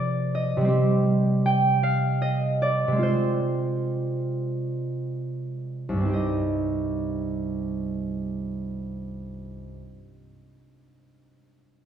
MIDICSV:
0, 0, Header, 1, 2, 480
1, 0, Start_track
1, 0, Key_signature, -3, "minor"
1, 0, Tempo, 741656
1, 456, Time_signature, 6, 3, 24, 8
1, 1422, Tempo, 811908
1, 1902, Tempo, 914634
1, 2382, Tempo, 1022147
1, 2862, Tempo, 1149425
1, 4302, Tempo, 1169591
1, 5721, End_track
2, 0, Start_track
2, 0, Title_t, "Harp"
2, 0, Program_c, 0, 46
2, 0, Note_on_c, 0, 48, 44
2, 0, Note_on_c, 0, 53, 37
2, 0, Note_on_c, 0, 60, 33
2, 0, Note_on_c, 0, 68, 34
2, 0, Note_on_c, 0, 72, 51
2, 0, Note_on_c, 0, 74, 74
2, 225, Note_on_c, 0, 75, 65
2, 360, Note_off_c, 0, 48, 0
2, 368, Note_on_c, 0, 48, 44
2, 394, Note_on_c, 0, 55, 36
2, 411, Note_off_c, 0, 60, 0
2, 418, Note_on_c, 0, 60, 38
2, 435, Note_off_c, 0, 53, 0
2, 442, Note_on_c, 0, 67, 37
2, 459, Note_off_c, 0, 68, 0
2, 553, Note_off_c, 0, 74, 0
2, 943, Note_on_c, 0, 79, 75
2, 1186, Note_on_c, 0, 77, 70
2, 1426, Note_off_c, 0, 75, 0
2, 1433, Note_on_c, 0, 75, 60
2, 1539, Note_off_c, 0, 72, 0
2, 1588, Note_off_c, 0, 77, 0
2, 1672, Note_on_c, 0, 74, 68
2, 1817, Note_off_c, 0, 48, 0
2, 1824, Note_on_c, 0, 48, 41
2, 1849, Note_on_c, 0, 56, 32
2, 1864, Note_off_c, 0, 60, 0
2, 1871, Note_on_c, 0, 60, 31
2, 1890, Note_on_c, 0, 65, 32
2, 1894, Note_off_c, 0, 55, 0
2, 1911, Note_on_c, 0, 72, 58
2, 1915, Note_off_c, 0, 67, 0
2, 1924, Note_off_c, 0, 79, 0
2, 1925, Note_off_c, 0, 75, 0
2, 2072, Note_off_c, 0, 74, 0
2, 3255, Note_on_c, 0, 36, 31
2, 3271, Note_on_c, 0, 43, 29
2, 3287, Note_on_c, 0, 55, 29
2, 3301, Note_off_c, 0, 60, 0
2, 3306, Note_on_c, 0, 60, 26
2, 3323, Note_on_c, 0, 63, 30
2, 3339, Note_on_c, 0, 67, 29
2, 3342, Note_off_c, 0, 48, 0
2, 3351, Note_off_c, 0, 56, 0
2, 3359, Note_on_c, 0, 75, 36
2, 3366, Note_off_c, 0, 65, 0
2, 3689, Note_off_c, 0, 72, 0
2, 4769, Note_off_c, 0, 55, 0
2, 4779, Note_off_c, 0, 60, 0
2, 4796, Note_off_c, 0, 63, 0
2, 4811, Note_off_c, 0, 67, 0
2, 4831, Note_off_c, 0, 75, 0
2, 4874, Note_off_c, 0, 36, 0
2, 4889, Note_off_c, 0, 43, 0
2, 5721, End_track
0, 0, End_of_file